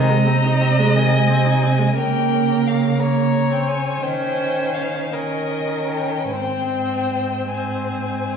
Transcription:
0.00 1.92 C3 medium
0.00 0.10 D#3 medium
0.00 1.95 D#5 medium
0.00 0.97 A#5 medium
0.09 0.28 G#3 medium
0.27 0.46 C4 medium
0.45 0.62 D#4 medium
0.61 0.80 C4 medium
0.79 0.97 G#3 medium
0.95 1.14 D#3 medium
0.95 1.96 G#5 medium
1.13 1.30 G#3 soft
1.28 1.47 C4 soft
1.46 1.64 D#4 soft
1.62 1.80 C4 medium
1.79 1.95 G#3 soft
1.96 3.99 C#3 medium
1.96 2.95 A#3 medium
1.96 3.01 A#4 medium
1.96 2.69 G5 medium
2.67 3.02 F5 medium
2.98 3.50 A#3 soft
2.98 4.04 C#5 medium
2.98 3.55 A#5 medium
3.51 4.02 C4 soft
3.51 3.70 G5 medium
3.68 4.04 G#5 medium
4.02 6.27 D#3 medium
4.02 5.11 C#4 medium
4.02 5.14 C5 medium
4.02 4.76 G5 medium
4.74 5.14 F5 medium
5.13 6.34 C#4 soft
5.13 6.30 A#4 medium
5.13 5.91 D#5 medium
5.92 6.29 G5 medium
6.30 8.37 G#2 soft
6.30 7.50 C4 soft
6.30 8.37 C5 medium
6.30 7.50 G5 medium
7.49 8.37 C4 soft
7.49 8.37 G#5 medium

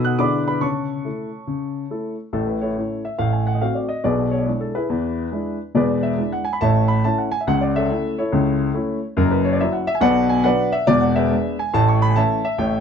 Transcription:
0.00 0.12 B2 medium
0.00 0.18 B3 soft
0.00 0.22 D#4 medium
0.00 0.21 F#4 soft
0.00 0.21 A4 soft
0.00 0.21 D#5 medium
0.00 0.20 B5 medium
0.00 0.22 D#6 medium
0.05 0.19 F#5 medium
0.05 0.19 F#6 medium
0.18 0.55 D3 medium
0.18 0.42 B3 soft
0.18 0.43 E4 soft
0.18 0.43 G#4 soft
0.18 0.46 D5 medium
0.18 0.46 B5 medium
0.18 0.48 D6 medium
0.48 0.61 B4 medium
0.48 0.62 B5 medium
0.61 0.98 C#3 medium
0.61 2.15 C#5 soft
0.61 2.15 A5 medium
0.61 2.18 C#6 medium
1.05 1.28 A3 soft
1.05 1.28 E4 soft
1.05 1.29 A4 soft
1.47 1.84 C#3 medium
1.91 2.14 A3 soft
1.91 2.14 E4 soft
1.91 2.15 A4 medium
2.33 2.69 A1 medium
2.33 2.69 A2 medium
2.33 2.47 A4 medium
2.47 2.61 B4 soft
2.61 2.77 E4 medium
2.61 3.02 A4 medium
2.61 3.04 C#5 medium
2.77 3.01 A3 soft
2.77 3.01 C#4 soft
2.77 3.02 E4 soft
3.05 3.19 E5 medium
3.18 3.55 A1 medium
3.18 3.55 A2 medium
3.18 3.33 F5 medium
3.33 3.47 G#5 medium
3.47 3.54 F#5 medium
3.55 3.62 D#5 medium
3.61 3.85 A3 soft
3.61 3.85 C4 soft
3.61 3.86 F#4 soft
3.61 3.75 F5 medium
3.75 3.89 D5 medium
3.89 4.04 D#5 medium
4.04 4.40 B1 medium
4.04 4.40 B2 medium
4.04 4.31 G#4 medium
4.04 4.31 B4 medium
4.04 4.32 D5 medium
4.31 4.39 C#5 medium
4.39 4.47 D5 medium
4.46 4.70 G#3 soft
4.46 4.70 D4 soft
4.46 4.70 E4 soft
4.46 4.61 C#5 medium
4.61 4.75 A4 medium
4.75 5.32 E4 medium
4.75 5.57 G#4 soft
4.75 5.60 B4 medium
4.90 5.26 E2 medium
4.90 5.26 E3 medium
5.32 5.55 G#3 medium
5.32 5.56 D4 soft
5.32 5.57 E4 medium
5.75 6.11 E1 medium
5.75 6.11 E2 medium
5.75 6.02 G#4 medium
5.75 6.02 B4 medium
5.75 6.03 D5 medium
6.03 6.32 E5 medium
6.17 6.41 G#3 soft
6.17 6.42 D4 soft
6.17 6.42 E4 soft
6.32 6.46 F#5 medium
6.45 6.53 G#5 medium
6.53 6.61 B5 medium
6.61 6.98 A1 medium
6.61 6.97 A2 medium
6.61 6.88 C#5 medium
6.61 6.88 E5 medium
6.61 6.89 A5 loud
6.88 7.03 B5 medium
7.04 7.28 A3 soft
7.04 7.28 C#4 medium
7.04 7.28 E4 medium
7.04 7.18 A5 medium
7.18 7.32 F#5 medium
7.32 7.39 G#5 loud
7.41 7.47 E5 medium
7.47 7.83 C#2 medium
7.47 7.83 C#3 medium
7.47 7.61 F#5 loud
7.61 7.75 D5 medium
7.76 8.16 A4 medium
7.76 8.16 C#5 medium
7.76 8.18 E5 medium
7.91 8.14 A3 medium
7.91 8.14 C#4 soft
7.91 8.14 E4 medium
8.18 8.74 E4 medium
8.18 9.00 A4 medium
8.18 9.03 C#5 medium
8.32 8.68 C#2 medium
8.32 8.69 C#3 medium
8.74 8.98 A3 medium
8.74 8.98 C#4 medium
8.74 8.98 E4 medium
9.17 9.54 F#1 medium
9.17 9.53 F#2 loud
9.17 9.31 A#4 medium
9.31 9.45 B4 medium
9.45 9.52 C#5 medium
9.52 9.60 D5 medium
9.60 9.83 F#3 medium
9.60 9.84 C#4 medium
9.60 9.84 E4 medium
9.60 9.74 E5 medium
9.73 9.87 F#5 medium
9.87 9.95 E5 loud
9.95 10.02 G#5 medium
10.01 10.38 B1 medium
10.01 10.38 B2 loud
10.01 10.29 B4 medium
10.01 10.28 D5 medium
10.01 10.30 F#5 loud
10.29 10.45 G#5 loud
10.44 10.68 F#3 medium
10.44 10.68 B3 medium
10.44 10.68 D4 medium
10.44 10.72 B4 medium
10.44 10.72 D5 medium
10.44 10.73 F#5 loud
10.72 10.87 E5 loud
10.87 11.24 E1 medium
10.87 11.24 E2 loud
10.87 11.02 D5 loud
11.01 11.15 F#5 medium
11.16 11.56 G#4 medium
11.16 11.56 B4 medium
11.16 11.59 E5 medium
11.31 11.54 G#3 soft
11.31 11.55 B3 soft
11.31 11.55 D4 medium
11.59 11.74 G#5 medium
11.73 12.10 A1 medium
11.73 12.10 A2 loud
11.73 11.88 A5 loud
11.88 12.02 C#6 medium
12.02 12.09 B5 medium
12.10 12.17 G#5 medium
12.16 12.40 E3 medium
12.16 12.40 A3 medium
12.16 12.40 C#4 medium
12.16 12.43 C#5 medium
12.16 12.43 E5 medium
12.16 12.45 A5 loud
12.45 12.58 E5 medium
12.58 12.80 A1 medium
12.58 12.80 A2 medium
12.58 12.80 C#5 medium
12.58 12.80 E5 medium
12.58 12.80 G5 medium

